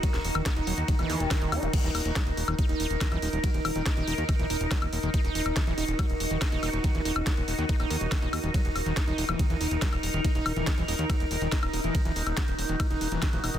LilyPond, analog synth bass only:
\new Staff \with { instrumentName = "Analog synth bass" } { \clef bass \time 4/4 \key ees \phrygian \tempo 4 = 141 r16 ees,,16 ees,,16 ees,,16 r16 ees,,16 ees,,16 ees,16 r16 ees,,16 ees,16 ees,,16 r16 ees,,16 ees,16 ees,,16 | r16 ees,,16 ees,,16 ees,,16 r16 ees,,16 ees,,16 ees,,16 r16 ees,,16 ees,,16 ees,,16 r16 ees,,16 ees,,16 ees,,16 | r16 ees,,16 ees,,16 ees,,16 r16 ees,,16 ees,,16 ees,16 r16 ees,,16 ees,,16 ees,,16 r16 ees,,16 ees,,16 ees,,16 | r16 ees,,16 ees,,16 ees,,16 r16 ees,,16 ees,,16 ees,,16 r16 ees,,16 ees,,16 ees,,16 r16 ees,,16 ees,,16 ees,,16 |
r16 ees,,16 ees,,16 ees,,16 r16 ees,,16 ees,,16 ees,16 r16 ees,,16 ees,16 ees,,16 r16 ees,,16 ees,16 ees,,16 | r16 ees,,16 ees,,16 ees,,16 r16 ees,,16 ees,,16 ees,,16 r16 ees,,16 ees,,16 ees,,16 r16 ees,,16 ees,,16 ees,,16 | r16 ees,,16 ees,,16 ees,,16 r16 ees,,16 ees,,16 ees,16 r16 ees,,16 ees,,16 ees,,16 r16 ees,,16 ees,,16 ees,,16 | r16 ees,,16 ees,,16 ees,,16 r16 ees,,16 ees,,16 ees,,16 r16 ees,,16 ees,,16 ees,,16 r16 ees,,16 ees,,16 ees,,16 | }